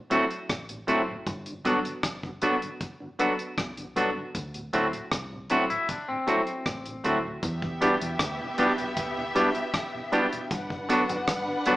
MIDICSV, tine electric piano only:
0, 0, Header, 1, 2, 480
1, 0, Start_track
1, 0, Key_signature, 1, "major"
1, 0, Tempo, 770218
1, 790, Time_signature, 4, 2, 24, 8
1, 7332, End_track
2, 0, Start_track
2, 0, Title_t, "Tine electric piano"
2, 0, Program_c, 0, 4
2, 68, Note_on_c, 0, 60, 87
2, 69, Note_on_c, 0, 64, 79
2, 71, Note_on_c, 0, 66, 83
2, 72, Note_on_c, 0, 69, 100
2, 151, Note_off_c, 0, 60, 0
2, 152, Note_off_c, 0, 64, 0
2, 153, Note_off_c, 0, 66, 0
2, 154, Note_off_c, 0, 69, 0
2, 548, Note_on_c, 0, 64, 84
2, 549, Note_on_c, 0, 60, 89
2, 550, Note_on_c, 0, 66, 79
2, 551, Note_on_c, 0, 69, 102
2, 632, Note_off_c, 0, 60, 0
2, 632, Note_off_c, 0, 64, 0
2, 633, Note_off_c, 0, 66, 0
2, 633, Note_off_c, 0, 69, 0
2, 1030, Note_on_c, 0, 59, 88
2, 1030, Note_on_c, 0, 62, 78
2, 1034, Note_on_c, 0, 66, 77
2, 1034, Note_on_c, 0, 69, 98
2, 1113, Note_off_c, 0, 59, 0
2, 1113, Note_off_c, 0, 62, 0
2, 1115, Note_off_c, 0, 66, 0
2, 1115, Note_off_c, 0, 69, 0
2, 1511, Note_on_c, 0, 59, 90
2, 1513, Note_on_c, 0, 62, 79
2, 1514, Note_on_c, 0, 66, 84
2, 1515, Note_on_c, 0, 69, 96
2, 1593, Note_off_c, 0, 59, 0
2, 1594, Note_off_c, 0, 62, 0
2, 1595, Note_off_c, 0, 66, 0
2, 1595, Note_off_c, 0, 69, 0
2, 1989, Note_on_c, 0, 59, 91
2, 1992, Note_on_c, 0, 62, 84
2, 1992, Note_on_c, 0, 66, 87
2, 1994, Note_on_c, 0, 69, 105
2, 2073, Note_off_c, 0, 59, 0
2, 2074, Note_off_c, 0, 62, 0
2, 2074, Note_off_c, 0, 66, 0
2, 2075, Note_off_c, 0, 69, 0
2, 2469, Note_on_c, 0, 59, 88
2, 2472, Note_on_c, 0, 62, 81
2, 2472, Note_on_c, 0, 66, 82
2, 2475, Note_on_c, 0, 69, 98
2, 2552, Note_off_c, 0, 59, 0
2, 2554, Note_off_c, 0, 62, 0
2, 2554, Note_off_c, 0, 66, 0
2, 2555, Note_off_c, 0, 69, 0
2, 2951, Note_on_c, 0, 60, 85
2, 2953, Note_on_c, 0, 64, 77
2, 2954, Note_on_c, 0, 66, 82
2, 2955, Note_on_c, 0, 69, 96
2, 3034, Note_off_c, 0, 60, 0
2, 3034, Note_off_c, 0, 64, 0
2, 3035, Note_off_c, 0, 66, 0
2, 3035, Note_off_c, 0, 69, 0
2, 3433, Note_on_c, 0, 60, 87
2, 3433, Note_on_c, 0, 64, 82
2, 3434, Note_on_c, 0, 66, 81
2, 3435, Note_on_c, 0, 69, 93
2, 3514, Note_off_c, 0, 60, 0
2, 3515, Note_off_c, 0, 64, 0
2, 3515, Note_off_c, 0, 66, 0
2, 3516, Note_off_c, 0, 69, 0
2, 3909, Note_on_c, 0, 60, 90
2, 3911, Note_on_c, 0, 64, 81
2, 3913, Note_on_c, 0, 66, 80
2, 3914, Note_on_c, 0, 69, 97
2, 3993, Note_off_c, 0, 60, 0
2, 3994, Note_off_c, 0, 64, 0
2, 3994, Note_off_c, 0, 66, 0
2, 3995, Note_off_c, 0, 69, 0
2, 4393, Note_on_c, 0, 60, 91
2, 4393, Note_on_c, 0, 66, 78
2, 4394, Note_on_c, 0, 64, 83
2, 4396, Note_on_c, 0, 69, 99
2, 4474, Note_off_c, 0, 60, 0
2, 4475, Note_off_c, 0, 64, 0
2, 4475, Note_off_c, 0, 66, 0
2, 4476, Note_off_c, 0, 69, 0
2, 4871, Note_on_c, 0, 62, 97
2, 4873, Note_on_c, 0, 66, 87
2, 4874, Note_on_c, 0, 67, 86
2, 4875, Note_on_c, 0, 71, 100
2, 4954, Note_off_c, 0, 62, 0
2, 4955, Note_off_c, 0, 66, 0
2, 4955, Note_off_c, 0, 67, 0
2, 4956, Note_off_c, 0, 71, 0
2, 5352, Note_on_c, 0, 62, 92
2, 5354, Note_on_c, 0, 66, 84
2, 5354, Note_on_c, 0, 67, 84
2, 5357, Note_on_c, 0, 71, 102
2, 5434, Note_off_c, 0, 62, 0
2, 5435, Note_off_c, 0, 66, 0
2, 5435, Note_off_c, 0, 67, 0
2, 5436, Note_off_c, 0, 71, 0
2, 5829, Note_on_c, 0, 62, 101
2, 5831, Note_on_c, 0, 66, 89
2, 5831, Note_on_c, 0, 67, 93
2, 5833, Note_on_c, 0, 71, 107
2, 5912, Note_off_c, 0, 62, 0
2, 5913, Note_off_c, 0, 66, 0
2, 5914, Note_off_c, 0, 67, 0
2, 5914, Note_off_c, 0, 71, 0
2, 6309, Note_on_c, 0, 62, 97
2, 6310, Note_on_c, 0, 66, 90
2, 6312, Note_on_c, 0, 67, 89
2, 6312, Note_on_c, 0, 71, 102
2, 6392, Note_off_c, 0, 62, 0
2, 6393, Note_off_c, 0, 66, 0
2, 6394, Note_off_c, 0, 67, 0
2, 6394, Note_off_c, 0, 71, 0
2, 6787, Note_on_c, 0, 62, 94
2, 6790, Note_on_c, 0, 66, 90
2, 6790, Note_on_c, 0, 69, 82
2, 6792, Note_on_c, 0, 71, 95
2, 6871, Note_off_c, 0, 62, 0
2, 6873, Note_off_c, 0, 66, 0
2, 6873, Note_off_c, 0, 69, 0
2, 6874, Note_off_c, 0, 71, 0
2, 7271, Note_on_c, 0, 62, 96
2, 7272, Note_on_c, 0, 66, 89
2, 7273, Note_on_c, 0, 69, 84
2, 7274, Note_on_c, 0, 71, 102
2, 7332, Note_off_c, 0, 62, 0
2, 7332, Note_off_c, 0, 66, 0
2, 7332, Note_off_c, 0, 69, 0
2, 7332, Note_off_c, 0, 71, 0
2, 7332, End_track
0, 0, End_of_file